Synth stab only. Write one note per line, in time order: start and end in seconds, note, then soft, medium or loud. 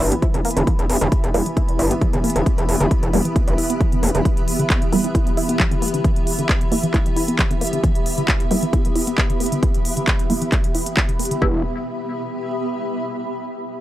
1.34 1.45 G3 medium
1.34 1.45 B3 medium
1.34 1.45 E4 loud
3.13 3.24 G3 medium
3.13 3.24 B3 medium
3.13 3.24 E4 medium
4.92 5.03 G3 medium
4.92 5.03 B3 medium
4.92 5.03 E4 loud
6.72 6.82 G3 medium
6.72 6.82 B3 medium
6.72 6.82 E4 medium
8.51 8.61 G3 medium
8.51 8.61 B3 medium
8.51 8.61 E4 loud
10.30 10.40 G3 medium
10.30 10.40 B3 medium
10.30 10.40 E4 medium
11.42 11.59 G3 medium
11.42 11.59 B3 medium
11.42 11.59 E4 loud